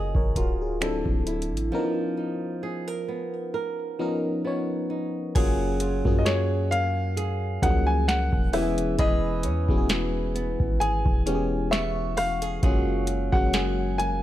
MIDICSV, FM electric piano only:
0, 0, Header, 1, 2, 480
1, 0, Start_track
1, 0, Key_signature, 6, "major"
1, 0, Tempo, 909091
1, 908, Time_signature, 4, 2, 24, 8
1, 7512, End_track
2, 0, Start_track
2, 0, Title_t, "FM electric piano"
2, 0, Program_c, 0, 5
2, 0, Control_c, 0, 64, 127
2, 0, Note_on_c, 0, 54, 79
2, 0, Note_on_c, 0, 58, 70
2, 0, Note_on_c, 0, 61, 71
2, 0, Note_on_c, 0, 65, 74
2, 0, Note_on_c, 0, 68, 90
2, 0, Note_on_c, 0, 75, 64
2, 75, Note_off_c, 0, 75, 0
2, 83, Note_on_c, 0, 73, 63
2, 87, Note_on_c, 0, 70, 58
2, 185, Note_off_c, 0, 73, 0
2, 187, Note_off_c, 0, 70, 0
2, 194, Note_on_c, 0, 70, 70
2, 198, Note_on_c, 0, 66, 60
2, 314, Note_off_c, 0, 70, 0
2, 317, Note_off_c, 0, 66, 0
2, 324, Note_off_c, 0, 68, 0
2, 324, Note_on_c, 0, 68, 59
2, 327, Note_off_c, 0, 65, 0
2, 327, Note_on_c, 0, 65, 51
2, 427, Note_off_c, 0, 54, 0
2, 427, Note_on_c, 0, 54, 70
2, 430, Note_on_c, 0, 60, 70
2, 433, Note_on_c, 0, 62, 65
2, 435, Control_c, 0, 64, 0
2, 436, Note_off_c, 0, 61, 0
2, 436, Note_on_c, 0, 64, 69
2, 439, Note_on_c, 0, 69, 86
2, 440, Note_off_c, 0, 58, 0
2, 518, Control_c, 0, 64, 127
2, 549, Note_off_c, 0, 68, 0
2, 551, Note_off_c, 0, 65, 0
2, 746, Note_off_c, 0, 54, 0
2, 747, Note_off_c, 0, 60, 0
2, 749, Note_off_c, 0, 62, 0
2, 750, Note_off_c, 0, 64, 0
2, 752, Note_off_c, 0, 69, 0
2, 910, Note_on_c, 0, 52, 66
2, 913, Note_on_c, 0, 59, 75
2, 915, Control_c, 0, 64, 0
2, 915, Note_on_c, 0, 61, 74
2, 919, Note_on_c, 0, 63, 72
2, 923, Note_on_c, 0, 70, 93
2, 945, Note_on_c, 0, 53, 80
2, 946, Note_off_c, 0, 52, 0
2, 1017, Control_c, 0, 64, 127
2, 1543, Note_off_c, 0, 59, 0
2, 1544, Note_off_c, 0, 61, 0
2, 1546, Note_off_c, 0, 63, 0
2, 1548, Note_off_c, 0, 70, 0
2, 1559, Note_off_c, 0, 53, 0
2, 2107, Note_on_c, 0, 53, 84
2, 2110, Note_on_c, 0, 59, 74
2, 2112, Note_on_c, 0, 61, 73
2, 2116, Note_on_c, 0, 63, 72
2, 2118, Note_on_c, 0, 70, 84
2, 2270, Note_off_c, 0, 53, 0
2, 2272, Note_off_c, 0, 59, 0
2, 2273, Note_off_c, 0, 61, 0
2, 2275, Note_off_c, 0, 63, 0
2, 2276, Note_off_c, 0, 70, 0
2, 2350, Note_on_c, 0, 53, 71
2, 2352, Note_on_c, 0, 59, 65
2, 2355, Note_on_c, 0, 61, 63
2, 2358, Note_on_c, 0, 63, 66
2, 2362, Note_on_c, 0, 73, 77
2, 2667, Note_off_c, 0, 53, 0
2, 2668, Note_off_c, 0, 59, 0
2, 2670, Note_off_c, 0, 61, 0
2, 2671, Note_off_c, 0, 63, 0
2, 2673, Note_off_c, 0, 73, 0
2, 2827, Note_on_c, 0, 54, 91
2, 2831, Note_on_c, 0, 58, 82
2, 2833, Note_on_c, 0, 61, 85
2, 2834, Control_c, 0, 64, 0
2, 2836, Note_on_c, 0, 65, 79
2, 2839, Note_on_c, 0, 68, 105
2, 2927, Control_c, 0, 64, 127
2, 3062, Note_off_c, 0, 54, 0
2, 3064, Note_off_c, 0, 58, 0
2, 3065, Note_off_c, 0, 61, 0
2, 3067, Note_off_c, 0, 65, 0
2, 3068, Note_off_c, 0, 68, 0
2, 3195, Note_on_c, 0, 54, 77
2, 3198, Note_on_c, 0, 58, 66
2, 3201, Note_on_c, 0, 61, 70
2, 3205, Note_on_c, 0, 65, 70
2, 3207, Note_on_c, 0, 68, 79
2, 3738, Note_off_c, 0, 54, 0
2, 3739, Note_off_c, 0, 58, 0
2, 3741, Note_off_c, 0, 61, 0
2, 3743, Note_off_c, 0, 65, 0
2, 3743, Note_off_c, 0, 68, 0
2, 4027, Note_on_c, 0, 54, 77
2, 4030, Note_on_c, 0, 58, 72
2, 4031, Note_on_c, 0, 61, 69
2, 4035, Note_on_c, 0, 53, 67
2, 4039, Note_on_c, 0, 68, 87
2, 4497, Note_off_c, 0, 54, 0
2, 4498, Note_off_c, 0, 58, 0
2, 4499, Note_off_c, 0, 61, 0
2, 4501, Note_off_c, 0, 53, 0
2, 4503, Note_off_c, 0, 68, 0
2, 4507, Note_on_c, 0, 52, 84
2, 4510, Note_on_c, 0, 56, 72
2, 4514, Control_c, 0, 64, 0
2, 4514, Note_on_c, 0, 59, 73
2, 4516, Note_on_c, 0, 61, 74
2, 4519, Note_on_c, 0, 67, 70
2, 4551, Note_off_c, 0, 67, 0
2, 4553, Note_on_c, 0, 68, 92
2, 4608, Control_c, 0, 64, 127
2, 4988, Note_off_c, 0, 52, 0
2, 4989, Note_off_c, 0, 56, 0
2, 4991, Note_off_c, 0, 59, 0
2, 4992, Note_off_c, 0, 61, 0
2, 5010, Note_off_c, 0, 68, 0
2, 5117, Note_on_c, 0, 52, 73
2, 5119, Note_on_c, 0, 56, 68
2, 5122, Note_on_c, 0, 59, 71
2, 5124, Note_on_c, 0, 61, 69
2, 5127, Note_on_c, 0, 66, 65
2, 5154, Note_off_c, 0, 66, 0
2, 5162, Note_on_c, 0, 68, 81
2, 5658, Note_off_c, 0, 52, 0
2, 5659, Note_off_c, 0, 56, 0
2, 5661, Note_off_c, 0, 59, 0
2, 5662, Note_off_c, 0, 61, 0
2, 5681, Note_off_c, 0, 68, 0
2, 5946, Note_on_c, 0, 52, 79
2, 5949, Note_on_c, 0, 56, 73
2, 5952, Note_on_c, 0, 59, 70
2, 5955, Note_on_c, 0, 61, 70
2, 5957, Note_on_c, 0, 67, 68
2, 5990, Note_off_c, 0, 67, 0
2, 5992, Note_on_c, 0, 68, 83
2, 6416, Note_off_c, 0, 52, 0
2, 6418, Note_off_c, 0, 56, 0
2, 6419, Note_off_c, 0, 59, 0
2, 6421, Note_off_c, 0, 61, 0
2, 6440, Note_off_c, 0, 68, 0
2, 6668, Note_on_c, 0, 65, 75
2, 6671, Note_on_c, 0, 56, 71
2, 6674, Note_on_c, 0, 58, 69
2, 6675, Control_c, 0, 64, 0
2, 6678, Note_on_c, 0, 61, 72
2, 6680, Note_on_c, 0, 66, 83
2, 6766, Control_c, 0, 64, 127
2, 6903, Note_off_c, 0, 65, 0
2, 6904, Note_off_c, 0, 56, 0
2, 6906, Note_off_c, 0, 58, 0
2, 6908, Note_off_c, 0, 61, 0
2, 6909, Note_off_c, 0, 66, 0
2, 7037, Note_on_c, 0, 54, 79
2, 7039, Note_on_c, 0, 56, 72
2, 7044, Note_on_c, 0, 58, 74
2, 7046, Note_on_c, 0, 61, 70
2, 7049, Note_on_c, 0, 66, 82
2, 7512, Note_off_c, 0, 54, 0
2, 7512, Note_off_c, 0, 56, 0
2, 7512, Note_off_c, 0, 58, 0
2, 7512, Note_off_c, 0, 61, 0
2, 7512, Note_off_c, 0, 66, 0
2, 7512, End_track
0, 0, End_of_file